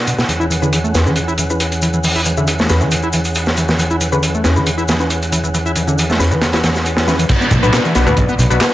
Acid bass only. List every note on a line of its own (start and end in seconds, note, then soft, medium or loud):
0.07 0.14 B2 medium
0.18 0.24 B2 medium
0.29 0.33 E3 medium
0.40 0.46 E4 medium
0.50 0.57 E3 medium
0.62 0.74 D3 medium
0.72 0.79 E3 medium
0.84 0.93 A3 medium
0.95 1.08 E2 medium
1.06 1.18 E3 medium
1.16 1.20 D3 medium
1.28 1.34 E4 loud
1.39 1.45 E3 medium
1.82 1.89 E3 medium
1.94 1.99 E3 medium
2.04 2.08 E3 medium
2.16 2.21 E4 medium
2.26 2.32 E3 medium
2.38 2.49 D3 medium
2.48 2.54 E3 medium
2.60 2.68 A3 medium
2.70 2.83 E2 medium
2.82 2.93 E3 medium
2.92 2.96 D3 medium
3.03 3.09 E4 loud
3.14 3.20 E3 medium
3.58 3.64 E3 medium
3.69 3.75 E3 medium
3.79 3.83 E3 medium
3.91 3.96 E4 loud
4.01 4.08 E3 medium
4.12 4.24 D3 medium
4.23 4.29 E3 medium
4.35 4.43 A3 medium
4.45 4.58 E2 medium
4.56 4.68 E3 medium
4.66 4.70 D3 medium
4.78 4.84 E4 loud
4.88 4.95 E3 medium
5.32 5.39 E3 medium
5.44 5.50 E3 medium
5.54 5.58 E3 medium
5.66 5.72 E4 loud
5.76 5.83 E3 medium
5.87 5.99 D3 medium
5.98 6.04 E3 medium
6.10 6.18 A3 medium
6.20 6.32 E2 medium
6.31 6.43 E3 medium
6.41 6.46 D3 medium
6.53 6.59 E4 loud
6.63 6.70 E3 medium
7.08 7.14 E3 medium
7.19 7.25 E3 medium
7.30 7.33 B2 medium
7.41 7.47 B3 loud
7.51 7.58 B2 medium
7.63 7.75 A2 medium
7.73 7.80 B2 medium
7.85 7.94 E3 medium
7.95 8.08 B1 loud
8.07 8.19 B2 medium
8.17 8.21 A2 medium
8.29 8.35 B3 loud
8.39 8.45 B2 medium